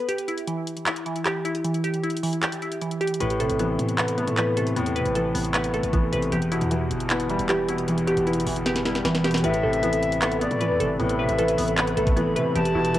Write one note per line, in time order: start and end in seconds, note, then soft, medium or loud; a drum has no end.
0.09 1.24 G4 medium
0.09 closed hi-hat medium
0.18 closed hi-hat medium
0.28 0.86 E4 medium
0.28 closed hi-hat medium
0.38 closed hi-hat medium
0.48 1.05 E3 medium
0.48 closed hi-hat medium
0.67 closed hi-hat medium
0.77 closed hi-hat medium
0.87 1.44 E4 medium
0.87 clap loud
0.87 closed hi-hat medium
0.96 closed hi-hat medium
1.06 1.63 E3 medium
1.06 closed hi-hat medium
1.16 closed hi-hat medium
1.26 1.83 G4 loud
1.26 clap medium
1.26 closed hi-hat medium
1.45 2.02 E4 medium
1.45 closed hi-hat medium
1.55 closed hi-hat soft
1.65 2.22 E3 medium
1.65 closed hi-hat medium
1.74 closed hi-hat medium
1.84 2.41 G4 loud
1.84 closed hi-hat medium
1.94 closed hi-hat medium
2.03 2.61 E4 medium
2.03 closed hi-hat soft
2.10 closed hi-hat medium
2.17 closed hi-hat medium
2.23 2.80 E3 medium
2.23 open hi-hat medium
2.33 closed hi-hat medium
2.42 3.00 G4 medium
2.42 clap loud
2.42 closed hi-hat medium
2.52 closed hi-hat medium
2.62 3.20 E4 medium
2.62 closed hi-hat medium
2.72 closed hi-hat medium
2.81 3.20 E3 medium
2.81 closed hi-hat medium
2.91 closed hi-hat medium
3.01 3.20 G4 loud
3.01 closed hi-hat soft
3.07 closed hi-hat medium
3.14 closed hi-hat medium
3.20 3.49 A1 loud
3.20 4.18 A2 loud
3.20 4.36 B4 medium
3.20 closed hi-hat medium
3.30 closed hi-hat medium
3.40 4.37 C3 medium
3.40 3.97 A4 medium
3.40 closed hi-hat medium
3.50 3.78 A1 loud
3.50 closed hi-hat medium
3.59 4.36 E3 medium
3.59 4.17 B3 medium
3.59 closed hi-hat medium
3.79 4.26 A2 loud
3.79 closed hi-hat medium
3.89 closed hi-hat medium
3.98 4.96 B3 loud
3.98 4.56 A4 medium
3.98 clap loud
3.98 closed hi-hat medium
4.08 closed hi-hat medium
4.18 5.15 A3 medium
4.18 4.75 B3 medium
4.18 closed hi-hat medium
4.27 4.78 A2 loud
4.27 closed hi-hat medium
4.37 5.14 E3 medium
4.37 4.94 B4 medium
4.37 clap loud
4.37 closed hi-hat medium
4.56 4.95 C3 medium
4.56 5.14 A4 medium
4.56 closed hi-hat medium
4.67 closed hi-hat soft
4.76 5.04 E2 loud
4.76 5.74 A2 loud
4.76 5.33 B3 medium
4.76 closed hi-hat medium
4.86 closed hi-hat medium
4.96 5.93 C3 medium
4.96 5.53 B4 loud
4.96 closed hi-hat medium
5.05 5.34 A1 loud
5.05 closed hi-hat medium
5.15 5.92 E3 medium
5.15 5.73 A4 medium
5.15 closed hi-hat medium
5.35 5.81 A1 loud
5.35 5.92 B3 medium
5.35 open hi-hat medium
5.45 closed hi-hat medium
5.54 6.32 B3 loud
5.54 6.11 B4 loud
5.54 clap loud
5.54 closed hi-hat medium
5.64 closed hi-hat medium
5.74 6.32 A3 medium
5.74 6.32 A4 medium
5.74 closed hi-hat medium
5.83 6.11 A1 loud
5.83 closed hi-hat medium
5.93 6.32 E3 medium
5.93 6.32 B3 medium
5.93 kick loud
5.93 closed hi-hat medium
6.12 6.31 A1 loud
6.12 6.32 C3 medium
6.12 6.32 B4 loud
6.12 closed hi-hat medium
6.22 closed hi-hat soft
6.32 6.60 E1 loud
6.32 7.30 E2 medium
6.32 7.48 G4 medium
6.32 closed hi-hat medium
6.42 closed hi-hat medium
6.52 7.49 B2 medium
6.52 7.09 E4 medium
6.52 closed hi-hat medium
6.61 6.89 E2 loud
6.61 closed hi-hat medium
6.71 7.28 E3 medium
6.71 7.48 E3 medium
6.71 closed hi-hat medium
6.91 7.37 G1 loud
6.91 closed hi-hat medium
7.00 closed hi-hat medium
7.10 8.08 B3 loud
7.10 7.67 E4 medium
7.10 clap loud
7.10 closed hi-hat medium
7.20 closed hi-hat medium
7.29 7.87 E3 medium
7.29 8.27 G3 medium
7.29 closed hi-hat medium
7.39 8.14 E1 loud
7.39 closed hi-hat medium
7.49 8.25 E3 medium
7.49 8.06 G4 loud
7.49 clap medium
7.49 closed hi-hat medium
7.68 8.05 B2 medium
7.68 8.26 E4 medium
7.68 closed hi-hat medium
7.78 closed hi-hat soft
7.88 8.85 E2 loud
7.88 8.45 E3 medium
7.88 closed hi-hat medium
7.98 closed hi-hat medium
8.07 9.04 B2 medium
8.07 8.65 G4 loud
8.07 closed hi-hat medium
8.17 8.38 E1 loud
8.17 closed hi-hat medium
8.27 9.03 E3 medium
8.27 8.84 E4 medium
8.27 closed hi-hat soft
8.33 8.46 G1 loud
8.33 closed hi-hat medium
8.40 closed hi-hat medium
8.46 9.03 G1 loud
8.46 9.04 E3 medium
8.46 open hi-hat medium
8.56 closed hi-hat medium
8.66 9.44 B3 loud
8.66 9.23 G4 loud
8.66 snare medium
8.66 closed hi-hat medium
8.76 snare medium
8.76 closed hi-hat medium
8.85 9.44 G3 medium
8.85 9.44 E4 medium
8.85 snare medium
8.85 closed hi-hat medium
8.95 snare medium
8.95 closed hi-hat medium
9.04 9.42 E1 loud
9.04 9.44 E3 medium
9.04 snare medium
9.04 closed hi-hat medium
9.15 snare medium
9.15 closed hi-hat medium
9.24 9.44 B2 medium
9.24 9.44 G4 loud
9.24 snare loud
9.24 closed hi-hat soft
9.31 snare medium
9.31 closed hi-hat medium
9.37 closed hi-hat medium
9.43 9.62 A1 loud
9.43 10.41 A2 loud
9.43 12.52 A4 medium
9.43 10.59 B4 loud
9.43 12.52 B4 medium
9.43 10.37 E5 loud
9.43 12.99 E5 medium
9.43 12.99 B5 medium
9.43 closed hi-hat medium
9.54 closed hi-hat medium
9.63 10.47 A1 loud
9.63 10.61 C3 medium
9.63 10.21 A4 medium
9.73 closed hi-hat medium
9.83 10.60 E3 medium
9.83 10.40 B3 medium
9.83 closed hi-hat medium
9.93 closed hi-hat medium
10.02 closed hi-hat medium
10.12 closed hi-hat medium
10.22 11.19 B3 loud
10.22 10.79 A4 medium
10.22 clap loud
10.22 closed hi-hat medium
10.32 closed hi-hat medium
10.41 11.39 A3 medium
10.41 10.98 B3 medium
10.41 10.96 D5 medium
10.41 closed hi-hat medium
10.51 10.72 A2 loud
10.51 closed hi-hat medium
10.61 11.37 E3 medium
10.61 11.18 B4 medium
10.61 closed hi-hat medium
10.70 10.80 E2 loud
10.80 10.99 G1 loud
10.80 11.18 C3 medium
10.80 11.38 A4 medium
10.80 closed hi-hat medium
11.00 11.28 A1 loud
11.00 11.97 A2 loud
11.00 11.57 B3 medium
11.00 closed hi-hat medium
11.09 closed hi-hat medium
11.19 12.17 C3 medium
11.19 11.76 B4 loud
11.19 11.74 E5 medium
11.29 11.57 A1 loud
11.29 closed hi-hat medium
11.39 12.15 E3 medium
11.39 11.96 A4 medium
11.39 closed hi-hat medium
11.48 closed hi-hat medium
11.58 11.96 A1 loud
11.58 12.15 B3 medium
11.58 open hi-hat medium
11.68 closed hi-hat medium
11.77 12.55 B3 loud
11.77 12.35 B4 medium
11.77 clap loud
11.77 closed hi-hat medium
11.87 closed hi-hat medium
11.97 12.28 A1 loud
11.97 12.56 A3 medium
11.97 12.55 A4 medium
11.97 closed hi-hat medium
12.07 kick loud
12.07 closed hi-hat medium
12.17 12.56 E3 medium
12.17 12.55 B3 medium
12.17 closed hi-hat medium
12.26 12.36 G1 loud
12.36 12.55 C3 medium
12.36 12.56 B4 loud
12.36 closed hi-hat medium
12.55 12.74 E1 loud
12.55 12.99 E2 medium
12.55 12.99 G4 medium
12.55 12.99 B4 medium
12.55 12.99 A5 loud
12.55 closed hi-hat medium
12.65 closed hi-hat medium
12.75 12.99 E1 loud
12.75 12.99 B2 medium
12.75 12.99 E4 medium
12.85 closed hi-hat medium
12.94 12.99 E3 medium
12.94 closed hi-hat medium